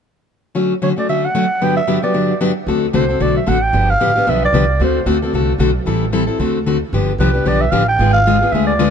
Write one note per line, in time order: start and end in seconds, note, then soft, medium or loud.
0.55 0.73 D3 medium
0.55 0.73 F#3 medium
0.55 0.73 A3 medium
0.55 0.73 C#4 medium
0.55 0.73 F#4 medium
0.82 0.92 D3 medium
0.82 0.91 F#3 medium
0.82 0.92 A3 medium
0.82 0.92 C#4 medium
0.82 0.92 F#4 medium
0.82 0.90 C#5 medium
0.96 1.08 A3 soft
0.96 1.08 C#4 soft
0.96 1.07 F#4 soft
0.96 1.08 D5 medium
1.09 1.27 D3 medium
1.09 1.26 F#3 medium
1.09 1.27 A3 medium
1.09 1.27 C#4 medium
1.09 1.27 F#4 medium
1.09 1.26 E5 medium
1.25 1.65 F#5 medium
1.35 1.45 D3 medium
1.35 1.45 F#3 medium
1.35 1.45 A3 medium
1.35 1.45 C#4 medium
1.35 1.45 F#4 medium
1.61 1.79 G2 medium
1.61 1.80 D3 medium
1.61 1.79 F#3 medium
1.61 1.80 B3 medium
1.61 1.80 D4 medium
1.61 1.80 G4 medium
1.61 1.76 G5 medium
1.77 2.01 E5 medium
1.87 1.98 G2 medium
1.87 1.98 D3 medium
1.87 1.98 F#3 medium
1.87 1.98 B3 medium
1.87 1.98 D4 medium
1.87 1.98 G4 medium
2.02 2.13 F#3 soft
2.02 2.13 B3 soft
2.02 2.13 D4 soft
2.02 2.13 G4 soft
2.02 2.38 D5 medium
2.14 2.32 G2 medium
2.14 2.32 D3 medium
2.14 2.32 F#3 medium
2.14 2.33 B3 medium
2.14 2.33 D4 medium
2.14 2.33 G4 medium
2.41 2.51 G2 medium
2.41 2.51 D3 medium
2.41 2.51 F#3 medium
2.41 2.51 B3 medium
2.41 2.51 D4 medium
2.41 2.51 G4 medium
2.67 2.88 D2 medium
2.67 2.86 D3 medium
2.67 2.86 A3 medium
2.67 2.86 C4 medium
2.67 2.86 F#4 medium
2.67 2.86 A4 medium
2.93 3.16 C2 medium
2.93 3.04 D3 medium
2.93 3.04 A3 medium
2.93 3.04 C4 medium
2.93 3.04 F#4 medium
2.93 3.04 A4 medium
2.93 3.23 C5 medium
3.09 3.19 C4 soft
3.09 3.19 F#4 soft
3.09 3.20 A4 soft
3.20 3.43 B1 medium
3.20 3.39 D3 medium
3.20 3.39 A3 medium
3.20 3.39 C4 medium
3.20 3.39 F#4 medium
3.20 3.39 A4 medium
3.20 3.36 D5 medium
3.37 3.50 E5 medium
3.46 3.70 A1 medium
3.46 3.57 D3 medium
3.46 3.57 A3 medium
3.46 3.57 C4 medium
3.46 3.57 F#4 medium
3.46 3.57 A4 medium
3.46 3.64 F#5 medium
3.63 3.92 G5 medium
3.73 3.94 G1 medium
3.73 3.92 D3 medium
3.73 3.92 F3 medium
3.73 3.92 B3 medium
3.73 3.92 D4 medium
3.73 3.92 G4 medium
3.90 4.31 F5 loud
4.01 4.23 A1 medium
4.01 4.11 D3 medium
4.01 4.11 F3 medium
4.01 4.11 B3 medium
4.01 4.11 D4 medium
4.01 4.11 G4 medium
4.16 4.26 B3 soft
4.16 4.26 D4 soft
4.16 4.26 G4 medium
4.27 4.50 B1 medium
4.27 4.45 D3 medium
4.27 4.45 F3 medium
4.27 4.45 B3 medium
4.27 4.45 D4 medium
4.27 4.45 G4 medium
4.27 4.43 E5 loud
4.45 4.79 D5 medium
4.53 4.75 C2 medium
4.53 4.64 D3 medium
4.53 4.64 F3 medium
4.53 4.64 B3 medium
4.53 4.64 D4 medium
4.53 4.64 G4 medium
4.80 5.01 D2 medium
4.80 4.99 D3 medium
4.80 4.98 A3 medium
4.80 4.99 C4 medium
4.80 4.99 F#4 medium
4.80 4.99 A4 medium
4.84 5.07 C5 medium
5.06 5.29 D2 medium
5.06 5.17 D3 medium
5.06 5.17 A3 medium
5.06 5.17 C4 medium
5.06 5.17 F#4 medium
5.06 5.17 A4 medium
5.22 5.33 C4 soft
5.22 5.33 F#4 soft
5.22 5.33 A4 medium
5.33 5.56 C2 medium
5.33 5.52 D3 medium
5.33 5.52 A3 medium
5.33 5.52 C4 medium
5.33 5.52 F#4 medium
5.33 5.52 A4 medium
5.58 5.81 B1 medium
5.58 5.70 D3 medium
5.58 5.70 A3 medium
5.58 5.70 C4 medium
5.58 5.70 F#4 medium
5.58 5.70 A4 medium
5.86 6.28 A1 medium
5.86 6.05 E3 medium
5.86 6.05 G3 medium
5.86 6.05 C4 medium
5.86 6.05 E4 medium
5.86 6.05 A4 medium
6.12 6.23 E3 medium
6.12 6.23 G3 medium
6.12 6.23 C4 medium
6.12 6.23 E4 medium
6.12 6.23 A4 medium
6.27 6.39 C4 soft
6.27 6.39 E4 soft
6.27 6.38 A4 medium
6.39 6.82 D2 medium
6.39 6.58 D3 medium
6.39 6.58 A3 medium
6.39 6.58 C4 medium
6.39 6.58 F#4 medium
6.39 6.58 A4 medium
6.66 6.76 D3 medium
6.66 6.76 A3 medium
6.66 6.77 C4 medium
6.66 6.77 F#4 medium
6.66 6.77 A4 medium
6.93 7.14 G1 medium
6.93 7.12 D3 medium
6.93 7.11 F3 medium
6.93 7.12 B3 medium
6.93 7.12 D4 medium
6.93 7.12 G4 medium
7.18 7.41 C2 medium
7.18 7.30 D3 medium
7.18 7.30 F3 medium
7.18 7.30 B3 medium
7.18 7.30 D4 medium
7.18 7.30 G4 medium
7.18 7.49 B4 medium
7.34 7.45 B3 soft
7.34 7.45 D4 soft
7.34 7.45 G4 soft
7.45 7.68 B1 medium
7.45 7.64 D3 medium
7.45 7.64 F3 medium
7.45 7.64 B3 medium
7.45 7.64 D4 medium
7.45 7.64 G4 medium
7.45 7.63 D5 medium
7.61 7.73 E5 medium
7.72 7.95 A1 medium
7.72 7.82 D3 medium
7.72 7.82 F3 medium
7.72 7.82 B3 medium
7.72 7.83 D4 medium
7.72 7.83 G4 medium
7.72 7.87 F5 medium
7.88 8.13 G5 medium
7.99 8.41 G#1 medium
7.99 8.18 D3 medium
7.99 8.18 G#3 medium
7.99 8.18 B3 medium
7.99 8.18 F4 medium
7.99 8.18 G#4 medium
8.13 8.53 F5 medium
8.27 8.36 D3 medium
8.27 8.37 G#3 medium
8.27 8.37 B3 medium
8.27 8.36 F4 medium
8.27 8.37 G#4 medium
8.42 8.53 B3 soft
8.42 8.52 F4 soft
8.42 8.52 G#4 soft
8.52 8.90 D2 medium
8.52 8.71 D3 medium
8.52 8.72 G#3 medium
8.52 8.72 B3 medium
8.52 8.72 F4 medium
8.52 8.72 G#4 medium
8.52 8.66 E5 medium
8.67 8.90 D5 medium
8.79 8.89 D3 medium
8.79 8.89 G#3 medium
8.79 8.90 B3 medium
8.79 8.89 F4 medium
8.79 8.90 G#4 loud